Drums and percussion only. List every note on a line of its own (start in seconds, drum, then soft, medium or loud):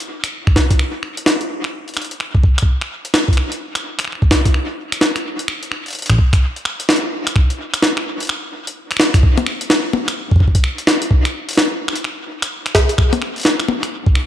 0.00 closed hi-hat soft
0.24 finger snap medium
0.24 closed hi-hat medium
0.47 finger snap soft
0.47 kick loud
0.56 kick loud
0.56 snare loud
0.71 kick loud
0.71 closed hi-hat medium
0.79 finger snap medium
1.03 finger snap soft
1.17 closed hi-hat medium
1.26 snare loud
1.41 closed hi-hat soft
1.64 finger snap soft
1.88 closed hi-hat soft
1.94 finger snap medium
1.94 closed hi-hat soft
1.97 closed hi-hat soft
2.02 closed hi-hat soft
2.05 closed hi-hat soft
2.11 closed hi-hat medium
2.20 finger snap medium
2.35 kick loud
2.44 kick loud
2.58 finger snap medium
2.58 closed hi-hat medium
2.62 kick loud
2.81 finger snap soft
3.05 closed hi-hat medium
3.14 finger snap medium
3.14 snare loud
3.28 kick loud
3.33 closed hi-hat soft
3.37 finger snap soft
3.52 closed hi-hat medium
3.75 finger snap medium
3.75 closed hi-hat medium
3.99 finger snap medium
3.99 finger snap soft
3.99 closed hi-hat medium
4.05 finger snap soft
4.08 finger snap soft
4.12 finger snap soft
4.15 finger snap soft
4.22 kick loud
4.31 finger snap medium
4.31 kick loud
4.31 snare loud
4.45 kick loud
4.45 closed hi-hat medium
4.54 finger snap medium
4.92 finger snap medium
4.92 closed hi-hat medium
5.01 snare loud
5.16 finger snap medium
5.16 closed hi-hat medium
5.39 closed hi-hat medium
5.48 finger snap medium
5.63 closed hi-hat medium
5.72 finger snap medium
5.86 closed hi-hat soft
5.88 closed hi-hat soft
5.91 closed hi-hat soft
5.93 closed hi-hat soft
5.95 closed hi-hat soft
5.99 closed hi-hat soft
6.02 closed hi-hat medium
6.06 finger snap medium
6.06 closed hi-hat medium
6.10 kick loud
6.10 closed hi-hat soft
6.11 kick medium
6.13 kick medium
6.15 kick medium
6.17 kick soft
6.18 kick loud
6.33 finger snap medium
6.33 kick loud
6.33 closed hi-hat medium
6.56 closed hi-hat soft
6.65 finger snap medium
6.80 closed hi-hat medium
6.89 finger snap medium
6.89 snare loud
6.96 closed hi-hat medium
7.27 finger snap medium
7.27 closed hi-hat medium
7.36 finger snap medium
7.36 kick loud
7.50 closed hi-hat medium
7.74 finger snap medium
7.74 closed hi-hat medium
7.82 snare loud
7.97 finger snap medium
8.20 closed hi-hat medium
8.23 closed hi-hat medium
8.25 closed hi-hat soft
8.27 finger snap medium
8.27 closed hi-hat soft
8.67 closed hi-hat medium
8.91 finger snap soft
8.91 closed hi-hat medium
8.97 finger snap medium
8.97 snare loud
9.14 finger snap medium
9.14 kick loud
9.14 closed hi-hat medium
9.23 kick loud
9.38 closed hi-hat medium
9.38 high tom medium
9.47 finger snap medium
9.61 closed hi-hat medium
9.70 snare loud
9.93 high tom medium
10.08 finger snap medium
10.08 closed hi-hat medium
10.31 kick loud
10.36 kick medium
10.40 kick medium
10.48 kick medium
10.55 kick medium
10.55 closed hi-hat medium
10.64 finger snap medium
10.78 closed hi-hat medium
10.87 finger snap medium
10.87 snare loud
11.02 closed hi-hat medium
11.11 kick loud
11.25 finger snap medium
11.25 closed hi-hat medium
11.49 closed hi-hat medium
11.51 closed hi-hat medium
11.53 closed hi-hat soft
11.55 snare loud
11.55 closed hi-hat soft
11.65 closed hi-hat soft
11.68 closed hi-hat soft
11.88 finger snap medium
11.95 closed hi-hat medium
12.04 finger snap medium
12.42 finger snap medium
12.42 closed hi-hat medium
12.66 finger snap medium
12.66 closed hi-hat medium
12.75 kick loud
12.75 snare loud
12.89 closed hi-hat medium
12.98 finger snap medium
12.98 kick loud
13.13 closed hi-hat medium
13.13 high tom medium
13.22 finger snap soft
13.36 closed hi-hat soft
13.38 closed hi-hat soft
13.40 closed hi-hat soft
13.41 closed hi-hat medium
13.43 snare loud
13.43 closed hi-hat medium
13.60 finger snap medium
13.60 closed hi-hat soft
13.68 high tom medium
13.83 finger snap medium
13.83 closed hi-hat medium
14.06 kick loud
14.15 finger snap medium